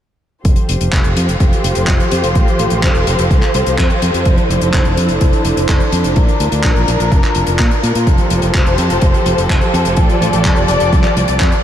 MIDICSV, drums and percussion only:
0, 0, Header, 1, 2, 480
1, 0, Start_track
1, 0, Key_signature, -1, "major"
1, 0, Tempo, 476190
1, 455, Time_signature, 4, 2, 24, 8
1, 11727, End_track
2, 0, Start_track
2, 0, Title_t, "Drums"
2, 452, Note_on_c, 9, 42, 60
2, 454, Note_on_c, 9, 36, 117
2, 553, Note_off_c, 9, 42, 0
2, 555, Note_off_c, 9, 36, 0
2, 563, Note_on_c, 9, 42, 41
2, 664, Note_off_c, 9, 42, 0
2, 693, Note_on_c, 9, 42, 92
2, 794, Note_off_c, 9, 42, 0
2, 814, Note_on_c, 9, 42, 58
2, 915, Note_off_c, 9, 42, 0
2, 931, Note_on_c, 9, 39, 106
2, 934, Note_on_c, 9, 36, 100
2, 938, Note_on_c, 9, 42, 69
2, 1032, Note_off_c, 9, 39, 0
2, 1035, Note_off_c, 9, 36, 0
2, 1039, Note_off_c, 9, 42, 0
2, 1051, Note_on_c, 9, 42, 45
2, 1151, Note_off_c, 9, 42, 0
2, 1176, Note_on_c, 9, 42, 98
2, 1276, Note_off_c, 9, 42, 0
2, 1298, Note_on_c, 9, 42, 61
2, 1399, Note_off_c, 9, 42, 0
2, 1414, Note_on_c, 9, 36, 111
2, 1414, Note_on_c, 9, 42, 64
2, 1514, Note_off_c, 9, 42, 0
2, 1515, Note_off_c, 9, 36, 0
2, 1540, Note_on_c, 9, 42, 45
2, 1641, Note_off_c, 9, 42, 0
2, 1656, Note_on_c, 9, 42, 100
2, 1756, Note_off_c, 9, 42, 0
2, 1765, Note_on_c, 9, 42, 65
2, 1866, Note_off_c, 9, 42, 0
2, 1883, Note_on_c, 9, 39, 107
2, 1894, Note_on_c, 9, 36, 100
2, 1898, Note_on_c, 9, 42, 68
2, 1984, Note_off_c, 9, 39, 0
2, 1995, Note_off_c, 9, 36, 0
2, 1999, Note_off_c, 9, 42, 0
2, 2016, Note_on_c, 9, 42, 43
2, 2117, Note_off_c, 9, 42, 0
2, 2132, Note_on_c, 9, 42, 105
2, 2233, Note_off_c, 9, 42, 0
2, 2254, Note_on_c, 9, 42, 72
2, 2355, Note_off_c, 9, 42, 0
2, 2372, Note_on_c, 9, 42, 62
2, 2375, Note_on_c, 9, 36, 124
2, 2473, Note_off_c, 9, 42, 0
2, 2475, Note_off_c, 9, 36, 0
2, 2499, Note_on_c, 9, 42, 44
2, 2599, Note_off_c, 9, 42, 0
2, 2613, Note_on_c, 9, 42, 94
2, 2714, Note_off_c, 9, 42, 0
2, 2725, Note_on_c, 9, 42, 61
2, 2826, Note_off_c, 9, 42, 0
2, 2854, Note_on_c, 9, 36, 98
2, 2856, Note_on_c, 9, 39, 127
2, 2859, Note_on_c, 9, 42, 69
2, 2955, Note_off_c, 9, 36, 0
2, 2956, Note_off_c, 9, 39, 0
2, 2960, Note_off_c, 9, 42, 0
2, 2972, Note_on_c, 9, 42, 46
2, 3072, Note_off_c, 9, 42, 0
2, 3095, Note_on_c, 9, 42, 97
2, 3196, Note_off_c, 9, 42, 0
2, 3213, Note_on_c, 9, 42, 66
2, 3314, Note_off_c, 9, 42, 0
2, 3334, Note_on_c, 9, 36, 121
2, 3336, Note_on_c, 9, 42, 60
2, 3434, Note_off_c, 9, 36, 0
2, 3437, Note_off_c, 9, 42, 0
2, 3450, Note_on_c, 9, 42, 41
2, 3453, Note_on_c, 9, 39, 32
2, 3551, Note_off_c, 9, 42, 0
2, 3554, Note_off_c, 9, 39, 0
2, 3570, Note_on_c, 9, 42, 92
2, 3671, Note_off_c, 9, 42, 0
2, 3694, Note_on_c, 9, 42, 66
2, 3795, Note_off_c, 9, 42, 0
2, 3811, Note_on_c, 9, 42, 61
2, 3813, Note_on_c, 9, 36, 108
2, 3814, Note_on_c, 9, 39, 117
2, 3912, Note_off_c, 9, 42, 0
2, 3914, Note_off_c, 9, 36, 0
2, 3914, Note_off_c, 9, 39, 0
2, 3930, Note_on_c, 9, 42, 44
2, 4031, Note_off_c, 9, 42, 0
2, 4054, Note_on_c, 9, 42, 94
2, 4154, Note_off_c, 9, 42, 0
2, 4176, Note_on_c, 9, 42, 63
2, 4277, Note_off_c, 9, 42, 0
2, 4288, Note_on_c, 9, 42, 58
2, 4293, Note_on_c, 9, 36, 121
2, 4388, Note_off_c, 9, 42, 0
2, 4394, Note_off_c, 9, 36, 0
2, 4410, Note_on_c, 9, 42, 38
2, 4511, Note_off_c, 9, 42, 0
2, 4541, Note_on_c, 9, 42, 86
2, 4642, Note_off_c, 9, 42, 0
2, 4651, Note_on_c, 9, 42, 60
2, 4752, Note_off_c, 9, 42, 0
2, 4772, Note_on_c, 9, 39, 122
2, 4773, Note_on_c, 9, 42, 69
2, 4774, Note_on_c, 9, 36, 101
2, 4873, Note_off_c, 9, 39, 0
2, 4874, Note_off_c, 9, 36, 0
2, 4874, Note_off_c, 9, 42, 0
2, 4888, Note_on_c, 9, 42, 40
2, 4988, Note_off_c, 9, 42, 0
2, 5014, Note_on_c, 9, 42, 96
2, 5115, Note_off_c, 9, 42, 0
2, 5126, Note_on_c, 9, 42, 57
2, 5227, Note_off_c, 9, 42, 0
2, 5250, Note_on_c, 9, 42, 67
2, 5254, Note_on_c, 9, 36, 121
2, 5350, Note_off_c, 9, 42, 0
2, 5355, Note_off_c, 9, 36, 0
2, 5371, Note_on_c, 9, 42, 45
2, 5472, Note_off_c, 9, 42, 0
2, 5489, Note_on_c, 9, 42, 82
2, 5590, Note_off_c, 9, 42, 0
2, 5617, Note_on_c, 9, 42, 63
2, 5717, Note_off_c, 9, 42, 0
2, 5728, Note_on_c, 9, 42, 61
2, 5732, Note_on_c, 9, 39, 108
2, 5734, Note_on_c, 9, 36, 110
2, 5828, Note_off_c, 9, 42, 0
2, 5833, Note_off_c, 9, 39, 0
2, 5835, Note_off_c, 9, 36, 0
2, 5848, Note_on_c, 9, 42, 39
2, 5949, Note_off_c, 9, 42, 0
2, 5970, Note_on_c, 9, 42, 90
2, 6071, Note_off_c, 9, 42, 0
2, 6090, Note_on_c, 9, 42, 60
2, 6191, Note_off_c, 9, 42, 0
2, 6208, Note_on_c, 9, 42, 56
2, 6214, Note_on_c, 9, 36, 127
2, 6309, Note_off_c, 9, 42, 0
2, 6315, Note_off_c, 9, 36, 0
2, 6335, Note_on_c, 9, 42, 39
2, 6436, Note_off_c, 9, 42, 0
2, 6452, Note_on_c, 9, 42, 99
2, 6553, Note_off_c, 9, 42, 0
2, 6571, Note_on_c, 9, 42, 62
2, 6672, Note_off_c, 9, 42, 0
2, 6685, Note_on_c, 9, 42, 66
2, 6686, Note_on_c, 9, 39, 116
2, 6694, Note_on_c, 9, 36, 102
2, 6786, Note_off_c, 9, 42, 0
2, 6787, Note_off_c, 9, 39, 0
2, 6795, Note_off_c, 9, 36, 0
2, 6815, Note_on_c, 9, 42, 38
2, 6916, Note_off_c, 9, 42, 0
2, 6934, Note_on_c, 9, 42, 100
2, 7035, Note_off_c, 9, 42, 0
2, 7057, Note_on_c, 9, 42, 57
2, 7158, Note_off_c, 9, 42, 0
2, 7174, Note_on_c, 9, 36, 123
2, 7176, Note_on_c, 9, 42, 59
2, 7275, Note_off_c, 9, 36, 0
2, 7277, Note_off_c, 9, 42, 0
2, 7288, Note_on_c, 9, 42, 40
2, 7299, Note_on_c, 9, 39, 37
2, 7389, Note_off_c, 9, 42, 0
2, 7399, Note_off_c, 9, 39, 0
2, 7405, Note_on_c, 9, 42, 76
2, 7506, Note_off_c, 9, 42, 0
2, 7525, Note_on_c, 9, 42, 56
2, 7626, Note_off_c, 9, 42, 0
2, 7648, Note_on_c, 9, 39, 108
2, 7649, Note_on_c, 9, 42, 59
2, 7654, Note_on_c, 9, 36, 109
2, 7749, Note_off_c, 9, 39, 0
2, 7750, Note_off_c, 9, 42, 0
2, 7755, Note_off_c, 9, 36, 0
2, 7774, Note_on_c, 9, 42, 42
2, 7875, Note_off_c, 9, 42, 0
2, 7898, Note_on_c, 9, 42, 85
2, 7998, Note_off_c, 9, 42, 0
2, 8017, Note_on_c, 9, 42, 66
2, 8118, Note_off_c, 9, 42, 0
2, 8134, Note_on_c, 9, 36, 113
2, 8134, Note_on_c, 9, 42, 56
2, 8235, Note_off_c, 9, 36, 0
2, 8235, Note_off_c, 9, 42, 0
2, 8246, Note_on_c, 9, 42, 40
2, 8347, Note_off_c, 9, 42, 0
2, 8370, Note_on_c, 9, 42, 91
2, 8471, Note_off_c, 9, 42, 0
2, 8488, Note_on_c, 9, 42, 58
2, 8589, Note_off_c, 9, 42, 0
2, 8610, Note_on_c, 9, 42, 62
2, 8614, Note_on_c, 9, 36, 102
2, 8614, Note_on_c, 9, 39, 118
2, 8711, Note_off_c, 9, 42, 0
2, 8715, Note_off_c, 9, 36, 0
2, 8715, Note_off_c, 9, 39, 0
2, 8733, Note_on_c, 9, 42, 45
2, 8834, Note_off_c, 9, 42, 0
2, 8850, Note_on_c, 9, 42, 92
2, 8951, Note_off_c, 9, 42, 0
2, 8972, Note_on_c, 9, 42, 62
2, 9073, Note_off_c, 9, 42, 0
2, 9087, Note_on_c, 9, 42, 62
2, 9094, Note_on_c, 9, 36, 120
2, 9188, Note_off_c, 9, 42, 0
2, 9195, Note_off_c, 9, 36, 0
2, 9216, Note_on_c, 9, 42, 42
2, 9317, Note_off_c, 9, 42, 0
2, 9333, Note_on_c, 9, 42, 88
2, 9434, Note_off_c, 9, 42, 0
2, 9457, Note_on_c, 9, 42, 63
2, 9558, Note_off_c, 9, 42, 0
2, 9572, Note_on_c, 9, 42, 55
2, 9574, Note_on_c, 9, 36, 104
2, 9579, Note_on_c, 9, 39, 105
2, 9673, Note_off_c, 9, 42, 0
2, 9675, Note_off_c, 9, 36, 0
2, 9679, Note_off_c, 9, 39, 0
2, 9691, Note_on_c, 9, 42, 43
2, 9792, Note_off_c, 9, 42, 0
2, 9819, Note_on_c, 9, 42, 82
2, 9920, Note_off_c, 9, 42, 0
2, 9930, Note_on_c, 9, 42, 64
2, 10031, Note_off_c, 9, 42, 0
2, 10045, Note_on_c, 9, 42, 63
2, 10054, Note_on_c, 9, 36, 115
2, 10146, Note_off_c, 9, 42, 0
2, 10155, Note_off_c, 9, 36, 0
2, 10175, Note_on_c, 9, 42, 42
2, 10276, Note_off_c, 9, 42, 0
2, 10300, Note_on_c, 9, 42, 82
2, 10401, Note_off_c, 9, 42, 0
2, 10414, Note_on_c, 9, 42, 65
2, 10515, Note_off_c, 9, 42, 0
2, 10532, Note_on_c, 9, 39, 119
2, 10532, Note_on_c, 9, 42, 63
2, 10534, Note_on_c, 9, 36, 95
2, 10633, Note_off_c, 9, 39, 0
2, 10633, Note_off_c, 9, 42, 0
2, 10635, Note_off_c, 9, 36, 0
2, 10647, Note_on_c, 9, 42, 42
2, 10748, Note_off_c, 9, 42, 0
2, 10768, Note_on_c, 9, 42, 89
2, 10869, Note_off_c, 9, 42, 0
2, 10889, Note_on_c, 9, 42, 62
2, 10990, Note_off_c, 9, 42, 0
2, 11014, Note_on_c, 9, 36, 119
2, 11014, Note_on_c, 9, 42, 68
2, 11115, Note_off_c, 9, 36, 0
2, 11115, Note_off_c, 9, 42, 0
2, 11126, Note_on_c, 9, 39, 31
2, 11127, Note_on_c, 9, 42, 44
2, 11227, Note_off_c, 9, 39, 0
2, 11228, Note_off_c, 9, 42, 0
2, 11257, Note_on_c, 9, 42, 84
2, 11358, Note_off_c, 9, 42, 0
2, 11369, Note_on_c, 9, 42, 61
2, 11470, Note_off_c, 9, 42, 0
2, 11487, Note_on_c, 9, 42, 69
2, 11490, Note_on_c, 9, 39, 112
2, 11494, Note_on_c, 9, 36, 103
2, 11587, Note_off_c, 9, 42, 0
2, 11591, Note_off_c, 9, 39, 0
2, 11595, Note_off_c, 9, 36, 0
2, 11612, Note_on_c, 9, 42, 48
2, 11713, Note_off_c, 9, 42, 0
2, 11727, End_track
0, 0, End_of_file